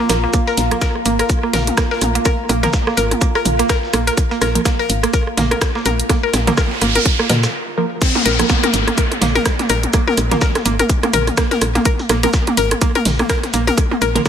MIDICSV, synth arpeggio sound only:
0, 0, Header, 1, 2, 480
1, 0, Start_track
1, 0, Tempo, 480000
1, 336, Time_signature, 4, 2, 24, 8
1, 14286, End_track
2, 0, Start_track
2, 0, Title_t, "Synth arpeggio sound"
2, 0, Program_c, 0, 84
2, 98, Note_on_c, 0, 58, 72
2, 160, Note_off_c, 0, 58, 0
2, 236, Note_on_c, 0, 58, 77
2, 305, Note_off_c, 0, 58, 0
2, 336, Note_on_c, 0, 58, 85
2, 374, Note_off_c, 0, 58, 0
2, 475, Note_on_c, 0, 70, 102
2, 503, Note_off_c, 0, 70, 0
2, 715, Note_on_c, 0, 58, 75
2, 742, Note_off_c, 0, 58, 0
2, 816, Note_on_c, 0, 70, 102
2, 854, Note_off_c, 0, 70, 0
2, 1056, Note_on_c, 0, 58, 77
2, 1094, Note_off_c, 0, 58, 0
2, 1193, Note_on_c, 0, 70, 101
2, 1222, Note_off_c, 0, 70, 0
2, 1433, Note_on_c, 0, 58, 78
2, 1462, Note_off_c, 0, 58, 0
2, 1534, Note_on_c, 0, 70, 104
2, 1573, Note_off_c, 0, 70, 0
2, 1773, Note_on_c, 0, 58, 84
2, 1813, Note_off_c, 0, 58, 0
2, 1913, Note_on_c, 0, 70, 100
2, 1942, Note_off_c, 0, 70, 0
2, 2152, Note_on_c, 0, 58, 76
2, 2181, Note_off_c, 0, 58, 0
2, 2252, Note_on_c, 0, 70, 101
2, 2292, Note_off_c, 0, 70, 0
2, 2492, Note_on_c, 0, 58, 76
2, 2532, Note_off_c, 0, 58, 0
2, 2632, Note_on_c, 0, 70, 101
2, 2661, Note_off_c, 0, 70, 0
2, 2872, Note_on_c, 0, 58, 78
2, 2901, Note_off_c, 0, 58, 0
2, 2972, Note_on_c, 0, 70, 105
2, 3012, Note_off_c, 0, 70, 0
2, 3212, Note_on_c, 0, 58, 81
2, 3252, Note_off_c, 0, 58, 0
2, 3353, Note_on_c, 0, 70, 103
2, 3382, Note_off_c, 0, 70, 0
2, 3592, Note_on_c, 0, 58, 78
2, 3621, Note_off_c, 0, 58, 0
2, 3694, Note_on_c, 0, 70, 105
2, 3733, Note_off_c, 0, 70, 0
2, 3934, Note_on_c, 0, 58, 76
2, 3973, Note_off_c, 0, 58, 0
2, 4073, Note_on_c, 0, 70, 103
2, 4102, Note_off_c, 0, 70, 0
2, 4313, Note_on_c, 0, 58, 79
2, 4342, Note_off_c, 0, 58, 0
2, 4415, Note_on_c, 0, 70, 104
2, 4454, Note_off_c, 0, 70, 0
2, 4655, Note_on_c, 0, 58, 80
2, 4694, Note_off_c, 0, 58, 0
2, 4794, Note_on_c, 0, 70, 105
2, 4822, Note_off_c, 0, 70, 0
2, 5034, Note_on_c, 0, 58, 76
2, 5062, Note_off_c, 0, 58, 0
2, 5135, Note_on_c, 0, 70, 100
2, 5174, Note_off_c, 0, 70, 0
2, 5375, Note_on_c, 0, 58, 80
2, 5414, Note_off_c, 0, 58, 0
2, 5514, Note_on_c, 0, 70, 105
2, 5542, Note_off_c, 0, 70, 0
2, 5754, Note_on_c, 0, 58, 76
2, 5782, Note_off_c, 0, 58, 0
2, 5857, Note_on_c, 0, 70, 99
2, 5894, Note_off_c, 0, 70, 0
2, 6097, Note_on_c, 0, 58, 85
2, 6135, Note_off_c, 0, 58, 0
2, 6234, Note_on_c, 0, 70, 102
2, 6262, Note_off_c, 0, 70, 0
2, 6475, Note_on_c, 0, 58, 77
2, 6503, Note_off_c, 0, 58, 0
2, 6577, Note_on_c, 0, 70, 98
2, 6614, Note_off_c, 0, 70, 0
2, 6816, Note_on_c, 0, 58, 79
2, 6854, Note_off_c, 0, 58, 0
2, 6955, Note_on_c, 0, 70, 104
2, 6982, Note_off_c, 0, 70, 0
2, 7194, Note_on_c, 0, 58, 80
2, 7222, Note_off_c, 0, 58, 0
2, 7296, Note_on_c, 0, 70, 79
2, 7334, Note_off_c, 0, 70, 0
2, 8153, Note_on_c, 0, 58, 81
2, 8182, Note_off_c, 0, 58, 0
2, 8255, Note_on_c, 0, 70, 99
2, 8293, Note_off_c, 0, 70, 0
2, 8495, Note_on_c, 0, 58, 84
2, 8534, Note_off_c, 0, 58, 0
2, 8634, Note_on_c, 0, 70, 102
2, 8662, Note_off_c, 0, 70, 0
2, 8874, Note_on_c, 0, 58, 80
2, 8902, Note_off_c, 0, 58, 0
2, 8977, Note_on_c, 0, 70, 102
2, 9015, Note_off_c, 0, 70, 0
2, 9217, Note_on_c, 0, 58, 81
2, 9254, Note_off_c, 0, 58, 0
2, 9355, Note_on_c, 0, 70, 109
2, 9382, Note_off_c, 0, 70, 0
2, 9595, Note_on_c, 0, 58, 77
2, 9623, Note_off_c, 0, 58, 0
2, 9696, Note_on_c, 0, 70, 100
2, 9734, Note_off_c, 0, 70, 0
2, 9936, Note_on_c, 0, 58, 83
2, 9974, Note_off_c, 0, 58, 0
2, 10075, Note_on_c, 0, 70, 107
2, 10102, Note_off_c, 0, 70, 0
2, 10315, Note_on_c, 0, 58, 77
2, 10342, Note_off_c, 0, 58, 0
2, 10417, Note_on_c, 0, 70, 104
2, 10454, Note_off_c, 0, 70, 0
2, 10655, Note_on_c, 0, 58, 79
2, 10693, Note_off_c, 0, 58, 0
2, 10794, Note_on_c, 0, 70, 104
2, 10822, Note_off_c, 0, 70, 0
2, 11034, Note_on_c, 0, 58, 81
2, 11062, Note_off_c, 0, 58, 0
2, 11135, Note_on_c, 0, 70, 110
2, 11174, Note_off_c, 0, 70, 0
2, 11377, Note_on_c, 0, 58, 85
2, 11414, Note_off_c, 0, 58, 0
2, 11512, Note_on_c, 0, 70, 104
2, 11541, Note_off_c, 0, 70, 0
2, 11752, Note_on_c, 0, 58, 78
2, 11781, Note_off_c, 0, 58, 0
2, 11854, Note_on_c, 0, 70, 104
2, 11893, Note_off_c, 0, 70, 0
2, 12095, Note_on_c, 0, 58, 76
2, 12133, Note_off_c, 0, 58, 0
2, 12233, Note_on_c, 0, 70, 101
2, 12262, Note_off_c, 0, 70, 0
2, 12474, Note_on_c, 0, 58, 79
2, 12502, Note_off_c, 0, 58, 0
2, 12574, Note_on_c, 0, 70, 106
2, 12613, Note_off_c, 0, 70, 0
2, 12816, Note_on_c, 0, 58, 82
2, 12854, Note_off_c, 0, 58, 0
2, 12954, Note_on_c, 0, 70, 108
2, 12982, Note_off_c, 0, 70, 0
2, 13194, Note_on_c, 0, 58, 81
2, 13222, Note_off_c, 0, 58, 0
2, 13296, Note_on_c, 0, 70, 101
2, 13334, Note_off_c, 0, 70, 0
2, 13537, Note_on_c, 0, 58, 77
2, 13574, Note_off_c, 0, 58, 0
2, 13674, Note_on_c, 0, 70, 105
2, 13702, Note_off_c, 0, 70, 0
2, 13914, Note_on_c, 0, 58, 79
2, 13942, Note_off_c, 0, 58, 0
2, 14016, Note_on_c, 0, 70, 103
2, 14054, Note_off_c, 0, 70, 0
2, 14286, End_track
0, 0, End_of_file